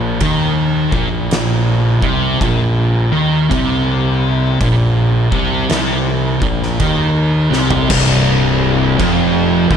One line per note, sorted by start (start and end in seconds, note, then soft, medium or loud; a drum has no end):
0.00 0.17 A#1 loud
0.00 0.20 A#2 loud
0.20 0.89 D#2 medium
0.20 0.90 D#3 loud
0.20 kick loud
0.20 crash medium
0.92 1.98 A#1 medium
0.92 2.00 A#2 loud
0.92 kick loud
1.31 snare loud
1.31 crash medium
2.02 2.38 C2 medium
2.02 2.40 C3 loud
2.02 kick loud
2.41 3.08 A#1 medium
2.41 3.10 A#2 loud
2.41 kick loud
2.41 crash medium
3.11 3.48 D#2 medium
3.11 3.49 D#3 loud
3.50 4.57 C2 loud
3.50 4.59 C3 loud
3.50 kick loud
3.50 crash medium
4.60 5.28 A#1 medium
4.60 5.29 A#2 loud
4.60 kick loud
4.60 crash medium
5.31 5.68 C2 medium
5.31 5.68 C3 loud
5.31 kick loud
5.69 6.38 C2 medium
5.69 6.39 C3 loud
5.69 snare loud
5.69 crash medium
6.41 6.78 A#1 medium
6.41 6.79 A#2 loud
6.41 kick loud
6.63 snare soft
6.79 7.47 D#2 medium
6.79 7.49 D#3 loud
6.79 kick loud
6.79 crash medium
7.51 7.87 C2 medium
7.51 7.89 C3 loud
7.51 snare medium
7.70 floor tom medium
7.90 8.96 C1 loud
7.90 8.98 C2 loud
7.90 kick loud
7.90 crash loud
7.90 crash medium
9.00 9.67 F1 loud
9.00 9.69 F2 loud
9.00 kick loud
9.00 crash medium
9.71 9.77 D#1 medium
9.71 9.77 D#2 loud
9.71 kick loud